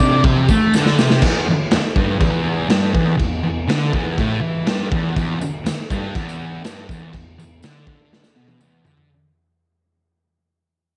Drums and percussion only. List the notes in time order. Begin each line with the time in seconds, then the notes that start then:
0.00 tambourine
0.24 kick, crash
0.48 kick, tambourine
0.74 snare, tambourine
0.86 snare
0.98 snare, tambourine
1.10 snare
1.22 kick, crash
1.71 snare, crash
1.96 kick
2.20 kick, crash
2.70 snare, crash
2.95 kick
3.19 kick, crash
3.69 snare, crash
3.93 kick
4.18 kick, crash
4.67 snare, crash
4.92 kick
5.17 kick, tambourine, crash
5.41 tambourine
5.66 snare, tambourine, crash
5.90 kick, tambourine
6.15 kick, tambourine, crash
6.29 tambourine
6.42 tambourine
6.64 snare, tambourine, crash
6.89 kick, tambourine
7.13 kick, tambourine, crash
7.40 tambourine
7.62 snare, tambourine, crash
7.87 kick
8.13 snare
8.24 snare, tambourine
8.37 tambourine
8.48 high tom, tambourine
8.61 mid tom, tambourine
8.85 floor tom, tambourine
8.97 floor tom